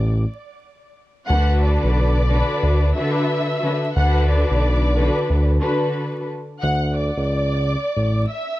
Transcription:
Already playing: analog synth bass A1, violin section D5 D6
1.28 analog synth bass D2, string section D3 D4 F#4 A4 B4, violin section F#5 F#6
1.64 violin section D5 D6
1.84 analog synth bass B1
2.28 string section D3 D4 F#4 A4 B4
2.63 analog synth bass D2
2.96 string section D3 D4 F#4 A4 B4, violin section E5 E6
3.62 string section D3 D4 F#4 A4 B4
3.95 analog synth bass D2, string section D3 D4 F#4 A4 B4, violin section F#5 F#6
4.30 violin section D5 D6
4.51 analog synth bass B1
4.96 string section D3 D4 F#4 A4 B4
5.30 analog synth bass D2
5.61 string section D3 D4 F#4 A4 B4
6.62 analog synth bass D2, violin section F#5 F#6
6.97 violin section D5 D6
7.17 analog synth bass C#2
7.97 analog synth bass A1
8.31 violin section E5 E6

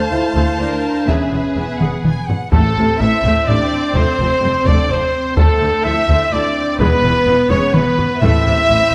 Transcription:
Already playing: violin section C5 F5 A5, viola section C5
0.11 cello section D2, double bass section D2, french horn section E4, viola section F4
0.35 cello section D2, double bass section D2, viola section A4, taiko
0.59 cello section D2, double bass section D2, french horn section D4, viola section D4, violin section A#4
1.07 double bass section E1, cello section E2, french horn section C#4, violin section G#4 E5, viola section G#4 B4, taiko
1.32 double bass section E1, cello section E2, viola section B3
1.56 double bass section E1, cello section E2, french horn section B3, viola section E4, violin section E5
1.80 double bass section E1, cello section E2, viola section G#4, violin section F#5, taiko mid
2.04 double bass section E1, cello section E2, viola section B3, violin section G#5, taiko mid
2.29 violin section F#5, taiko low
2.52 double bass section A1, cello section A2, timpani A2, viola section A3 C4, french horn section A3, violin section A4, trumpet A4, taiko
2.76 double bass section A1, cello section A2, viola section C3
2.99 double bass section A1, cello section A2, viola section E3, french horn section E4, violin section E5, trumpet E5
3.23 double bass section A1, cello section A2, viola section A3, taiko
3.47 double bass section A1, cello section A2, viola section C3, french horn section D4, violin section D5, trumpet D5
3.94 double bass section F1, cello section F2, viola section A3, french horn section C4, violin section C5, trumpet C5, taiko
4.19 double bass section F1, cello section F2, viola section F3
4.42 double bass section F1, cello section F2, viola section G3
4.66 double bass section F1, cello section F2, viola section A3, french horn section D4, violin section D5, trumpet D5, taiko
4.90 double bass section F1, cello section F2, viola section F3, french horn section C4, violin section C5, trumpet C5
5.37 double bass section D2, cello section D2, french horn section A3, viola section A3 C4, trumpet A4, violin section A4, taiko
5.61 cello section D2, double bass section D2, viola section D3
5.84 double bass section D2, cello section D2, viola section F3, french horn section E4, trumpet E5, violin section E5
6.09 cello section D2, double bass section D2, viola section A3, taiko
6.32 cello section D2, double bass section D2, viola section D3, french horn section D4, trumpet D5, violin section D5
6.79 double bass section E1, timpani E2, cello section E2, viola section G#3 B3, french horn section B3, violin section B4, trumpet B4, taiko
7.03 double bass section E1, cello section E2, viola section E3
7.26 double bass section E1, cello section E2, viola section E3
7.49 double bass section E1, cello section E2, viola section G#3, french horn section C#4, violin section C#5, trumpet C#5, taiko high
7.73 double bass section E1, cello section E2, viola section E3, french horn section B3, violin section B4, trumpet B4, taiko mid
7.98 taiko low
8.21 double bass section A1, cello section A2, timpani A2, viola section A3 C4, french horn section E4, violin section E5, trumpet E5, taiko
8.45 double bass section A1, cello section A2, viola section C3
8.69 double bass section A1, cello section A2, viola section E3

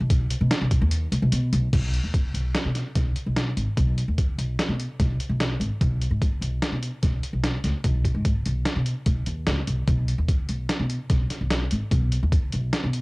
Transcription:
0.00 upright bass B1
0.10 kick, closed hi-hat
0.30 closed hi-hat
0.41 upright bass B2
0.51 snare, closed hi-hat
0.61 upright bass B1
0.71 kick, closed hi-hat
0.82 upright bass D#2
0.91 closed hi-hat
1.12 upright bass B1, closed hi-hat
1.22 upright bass B1
1.32 upright bass B2, closed hi-hat
1.53 upright bass B1, closed hi-hat
1.73 upright bass B1, kick, closed hi-hat, crash
1.93 closed hi-hat
2.04 upright bass D#2
2.14 kick, closed hi-hat
2.34 upright bass B1, closed hi-hat
2.54 snare, closed hi-hat
2.65 upright bass B2
2.75 snare, closed hi-hat
2.95 upright bass B1, kick, snare, closed hi-hat
3.16 closed hi-hat
3.26 upright bass B1
3.36 snare, closed hi-hat
3.57 upright bass G#1, closed hi-hat
3.77 upright bass B1, kick, closed hi-hat
3.98 closed hi-hat
4.08 upright bass D#2
4.18 kick, closed hi-hat
4.38 upright bass B1, closed hi-hat
4.59 snare, closed hi-hat
4.69 upright bass B2
4.80 closed hi-hat
5.00 upright bass B1, kick, snare, closed hi-hat
5.20 closed hi-hat
5.29 upright bass B1
5.40 snare, closed hi-hat
5.60 upright bass G#1, closed hi-hat
5.81 upright bass B1, kick, closed hi-hat
6.02 closed hi-hat
6.11 upright bass G#2
6.22 kick, closed hi-hat
6.41 upright bass B1, closed hi-hat
6.62 snare, closed hi-hat
6.72 upright bass B2
6.83 closed hi-hat
7.03 upright bass B1, kick, snare, closed hi-hat
7.23 closed hi-hat
7.33 upright bass B1
7.44 snare, closed hi-hat
7.64 upright bass C#2, snare, closed hi-hat
7.84 upright bass B1, kick, closed hi-hat
8.05 kick, closed hi-hat
8.15 upright bass G#2
8.25 kick, closed hi-hat
8.46 upright bass B1, closed hi-hat
8.65 snare, closed hi-hat
8.76 upright bass B2
8.86 closed hi-hat
9.06 upright bass B1, kick, closed hi-hat
9.26 upright bass D#2, closed hi-hat
9.47 upright bass C#2, snare, closed hi-hat
9.67 upright bass B1, closed hi-hat
9.88 upright bass B1, kick, closed hi-hat
10.08 closed hi-hat
10.18 upright bass D#2
10.29 kick, closed hi-hat
10.49 upright bass B1, closed hi-hat
10.69 snare, closed hi-hat
10.79 upright bass B2
10.90 closed hi-hat
11.10 upright bass B1, kick, snare, closed hi-hat
11.30 snare, closed hi-hat
11.41 upright bass B1
11.51 snare, closed hi-hat
11.71 upright bass G#1, closed hi-hat
11.91 upright bass B1, kick, closed hi-hat
12.12 closed hi-hat
12.23 upright bass D#2
12.32 kick, closed hi-hat
12.52 upright bass B1, closed hi-hat
12.73 snare, closed hi-hat
12.84 upright bass B2
12.93 closed hi-hat

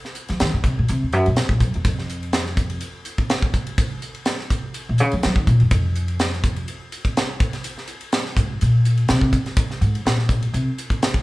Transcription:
0.05 snare
0.15 hi-hat pedal, ride
0.28 upright bass F3, snare, ride
0.40 upright bass D#3, snare, hi-hat pedal, ride
0.54 upright bass C#3
0.64 upright bass C3, kick, hi-hat pedal, ride
0.79 upright bass A#2
0.88 upright bass C3, hi-hat pedal, ride
1.03 upright bass D#2
1.12 upright bass F#2, hi-hat pedal, ride
1.26 upright bass A#2, ride
1.36 upright bass C3, snare, hi-hat pedal, ride
1.49 upright bass A#2, kick
1.60 upright bass F#2, kick, hi-hat pedal, ride
1.74 upright bass E2, ride
1.85 upright bass F2, kick, hi-hat pedal, ride
1.99 snare
2.09 hi-hat pedal, ride
2.23 ride
2.33 snare, hi-hat pedal, ride
2.46 snare
2.57 kick, hi-hat pedal, ride
2.70 ride
2.81 hi-hat pedal, ride
3.05 hi-hat pedal, ride
3.18 kick, ride
3.30 snare, hi-hat pedal, ride
3.42 kick
3.54 kick, hi-hat pedal, ride
3.67 ride
3.78 kick, hi-hat pedal, ride
4.02 hi-hat pedal, ride
4.15 ride
4.25 snare, hi-hat pedal, ride
4.39 snare
4.50 kick, hi-hat pedal, ride
4.74 hi-hat pedal, ride
4.89 upright bass A#2
4.98 upright bass C#3, hi-hat pedal, ride
5.11 upright bass F3, ride
5.23 upright bass F#3, snare, hi-hat pedal, ride
5.36 upright bass D#3, kick
5.47 upright bass A#2, kick, hi-hat pedal, ride
5.60 upright bass F#2, ride
5.71 upright bass F2, kick, hi-hat pedal, ride
5.95 hi-hat pedal, ride
6.08 ride
6.19 snare, hi-hat pedal, ride
6.33 snare
6.43 kick, hi-hat pedal, ride
6.56 ride
6.68 hi-hat pedal, ride
6.92 hi-hat pedal, ride
7.05 kick, ride
7.17 snare, hi-hat pedal, ride
7.40 kick, hi-hat pedal, ride
7.53 snare, ride
7.64 hi-hat pedal, ride
7.78 snare
7.87 hi-hat pedal, ride
8.01 ride
8.12 snare, hi-hat pedal, ride
8.26 snare
8.37 upright bass G#2, kick, hi-hat pedal, ride
8.61 upright bass A#2, hi-hat pedal, ride
8.85 hi-hat pedal, ride
8.97 ride
9.08 upright bass C3, snare, hi-hat pedal, ride
9.21 kick
9.33 kick, hi-hat pedal, ride
9.46 snare, ride
9.57 kick, hi-hat pedal, ride
9.71 snare
9.81 upright bass G#2, hi-hat pedal, ride
9.95 ride
10.05 upright bass A#2, snare, hi-hat pedal, ride
10.19 snare
10.29 kick, hi-hat pedal, ride
10.42 ride
10.54 upright bass C3, hi-hat pedal, ride
10.78 hi-hat pedal, ride
10.90 kick, ride
11.02 snare, hi-hat pedal, ride
11.14 kick

